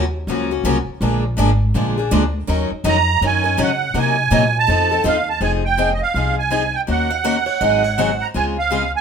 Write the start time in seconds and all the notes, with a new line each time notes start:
Already playing: D#2
0.27 C#2 C#3 F3 F#3 A#3 C#4 F4 F#4 A#4
0.51 A#3 C#4 F#4
0.64 C2 C#3 F3 F#3 A#3 C#4 F4 F#4 A#4
0.87 muted upright bass stroke
1.01 A#1 D3 F3 G#3 A#3 D4 F4 G#4 A#4
1.37 G#1 D3 F3 G#3 A#3 D4 F4 G#4 A#4
1.74 A#1 D3 F3 G#3 A#3 D4 F4 G#4 A#4
1.98 A#3 D4 G#4
2.11 D2 D3 F3 G#3 A#3 D4 F4 G#4 A#4
2.48 D#2 D#3 F#3 C#4 D#4 A#4
2.72 muted upright bass stroke
2.84 F2 D#3 F#3 C#4 D#4 A#4
2.89 A#5
3.21 F#2 D#3 F#3 C#4 D#4 A#4
3.27 G#5
3.44 C#4 D#4 A#4
3.58 C#3 D#3 F#3 C#4 D#4 A#4
3.63 F#5
3.94 C3 F#3 A#3 D#4 A#4
3.99 G#5
4.31 A#2 C3 F#3 A#3 D#4 A#4
4.59 A5
4.68 F2 F3 C4 D#4 A4
4.91 C4 D#4 A4
5.04 D#2 F3 C4 D#4 A4 F5
5.30 A5
5.41 F1 F3 C4 D#4 G#4 G#5
5.65 G5
5.77 F3 C4 D#4 G#4
5.93 D#5
6.02 F5
6.14 C2 F3 C4 D#4 G#4
6.39 G#5
6.51 F3 C4 D#4 G#4
6.75 G5
6.87 D#2 D#3 A#3 C#4 F#4 A#4 F#5
7.11 F5
7.24 D#3 A#3 C#4 F#4 A#4 F#5
7.46 C#5
7.61 G#1 D#3 F#3 C4 D#4 G#4 D#5
7.84 C#5
7.98 D#3 F#3 C4 D#4 G#4 C5
8.22 A#5
8.34 C#2 C#3 G#3 C4 F4 G#4 G#5
8.59 F5
8.71 C#3 G#3 C4 F4 G#4
8.96 G#5